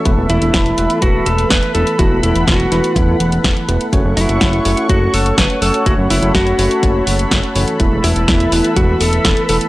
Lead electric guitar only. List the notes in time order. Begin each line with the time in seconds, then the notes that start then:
0.30 E4
1.02 F#4
1.26 A4
1.50 B4
1.74 A4
1.99 F#4
2.23 E4
2.47 F#4
2.98 E4
4.17 E4
4.90 F#4
5.14 A4
5.38 B4
5.62 A4
5.86 F#4
6.10 E4
6.35 F#4
8.04 E4
8.77 F#4
9.01 A4
9.49 A4